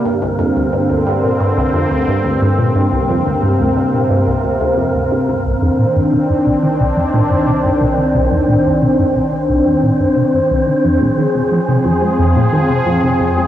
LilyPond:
<<
  \new Staff \with { instrumentName = "Synth texture" } { \time 4/4 \key c \minor \tempo 4 = 89 <bes bes'>1~ | <bes bes'>1 | <c' c''>1~ | <c' c''>1~ |
<c' c''>1 | }
  \new Staff \with { instrumentName = "Analog synth pad" } { \clef bass \time 4/4 \key c \minor << { <g, c'>1~ | <g, c'>1 | <ees d'>1~ | <ees d'>1 |
<f aes'>1 | } \\ { d1 | c1 | c'1~ | c'1~ |
c'1 | } >> }
  \new Staff \with { instrumentName = "Synth arpeggio sound" } { \clef bass \time 4/4 \key c \minor g,16 c,16 f,16 d,16 g,16 d,16 g,16 bes,16 g,16 c,16 f,16 d,16 g,16 d,16 g,16 bes,16 | g,16 c,16 f,16 d,16 g,16 d,16 g,16 bes,16 g,16 c,16 d,16 d,16 f,16 d,16 g,16 d,16 | c,16 f,16 bes,16 g,16 c16 g,16 c,16 ees16 c,16 f,16 bes,16 g,16 c16 g,16 c,16 ees16 | c,16 f,16 bes,16 g,16 c16 g,16 c,16 ees16 c,16 f,16 bes,16 g,16 c16 g,16 c,16 ees16 |
f,16 bes,16 ees16 c16 f16 c16 f,16 aes16 f,16 bes,16 ees16 c16 f16 c16 f,16 aes16 | }
  \new Staff \with { instrumentName = "Synth drone" } { \clef bass \time 4/4 \key c \minor r1 | r1 | c,1~ | c,1 |
f,1 | }
>>